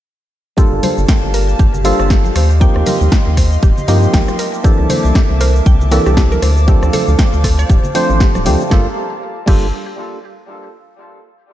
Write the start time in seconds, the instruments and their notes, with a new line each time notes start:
0.57 synth stab G3 A#3 D4 F4 A4, analog synth pad A#3 G4 F5 A5, synth arpeggio sound G4, kick, shaker
0.72 analog synth bass G1
0.83 synth arpeggio sound C5, open hi-hat, high conga, low conga, shaker
0.98 analog synth bass G1, shaker
1.08 synth arpeggio sound G5, kick, snare, shaker
1.23 analog synth bass G1
1.34 synth arpeggio sound A#4, open hi-hat, shaker
1.49 shaker
1.59 analog synth bass G1, synth arpeggio sound G4, kick, shaker
1.74 low conga, shaker
1.84 synth stab G3 A#3 D4 F4 A4, synth arpeggio sound C5, open hi-hat, shaker
2.00 analog synth bass G1, cross-stick, shaker
2.10 synth arpeggio sound G4, kick, snare, shaker
2.24 high conga, shaker
2.36 analog synth bass D#2, synth arpeggio sound C5, analog synth pad D#5 F5 C6, cross-stick, open hi-hat, shaker
2.51 shaker
2.60 synth stab F3 A#3 C4 D#4 G4, synth arpeggio sound G5, kick, shaker
2.76 analog synth bass D#2, cross-stick
2.86 synth arpeggio sound A#4, open hi-hat, high conga, low conga, shaker
3.01 analog synth bass D#2, shaker
3.12 synth arpeggio sound G4, kick, snare, shaker
3.27 analog synth bass D#2
3.37 synth arpeggio sound C5, kick, cross-stick, snare, open hi-hat, shaker
3.52 shaker
3.63 analog synth bass D#1, synth arpeggio sound G4, kick, shaker
3.78 low conga, shaker
3.88 analog synth bass G2, synth stab F3 A#3 C4 D#4 G4, synth arpeggio sound C5, open hi-hat, shaker
4.03 shaker
4.14 analog synth bass A#1, synth arpeggio sound G5, kick, snare, shaker
4.28 cross-stick, high conga, shaker
4.39 analog synth pad A#3 E5 A5 D6, synth arpeggio sound A#4, open hi-hat, shaker
4.54 shaker
4.64 synth stab E3 A#3 C4 D4 A4, synth arpeggio sound G4, kick, shaker
4.79 analog synth bass C2
4.89 synth arpeggio sound C5, open hi-hat, high conga, low conga, shaker
5.05 analog synth bass C2, shaker
5.15 synth arpeggio sound G4, kick, snare, shaker
5.30 analog synth bass C2
5.41 synth pluck A#4, synth arpeggio sound C5, open hi-hat, shaker
5.56 shaker
5.66 analog synth bass C2, synth arpeggio sound G5, kick, shaker
5.81 low conga, shaker
5.91 synth stab E3 A#3 C4 D4 A4, synth pluck G4, synth arpeggio sound A#4, open hi-hat, shaker
6.06 analog synth bass C2, synth pluck G4, cross-stick, shaker
6.17 synth arpeggio sound G4, synth pluck G4, kick, snare, shaker
6.32 synth pluck A#4, high conga, shaker
6.42 analog synth bass D2, synth arpeggio sound C5, analog synth pad C5 F5, cross-stick, open hi-hat, shaker
6.57 shaker
6.67 synth stab F3 A3 C4 D4 A4, synth arpeggio sound G4, kick, shaker
6.83 analog synth bass D2, cross-stick, shaker
6.93 synth pluck A4, synth arpeggio sound C5, open hi-hat, high conga, low conga, shaker
7.08 analog synth bass D2, shaker
7.19 synth arpeggio sound G5, kick, snare, shaker
7.33 analog synth bass D2, shaker
7.44 synth arpeggio sound A4, kick, cross-stick, snare, open hi-hat, shaker
7.59 synth pluck D5, shaker
7.70 analog synth bass D1, synth arpeggio sound G4, kick, shaker
7.84 low conga, shaker
7.95 synth stab F3 A3 C4 D4 C5, synth arpeggio sound C5, open hi-hat, shaker
8.10 analog synth bass A1, shaker
8.20 synth arpeggio sound G4, kick, snare, shaker
8.35 analog synth bass D1, cross-stick, high conga, shaker
8.45 analog synth bass D2, synth stab F3 A3 C4 D4 G4, synth arpeggio sound C5, open hi-hat, low conga, shaker
8.61 shaker
8.70 analog synth bass G1, synth stab G3 A#3 D4 F4 A4, synth arpeggio sound G4, kick, snare
9.46 analog synth bass G1, synth stab G3 A#3 D4 F4 A4, synth arpeggio sound G4, kick, crash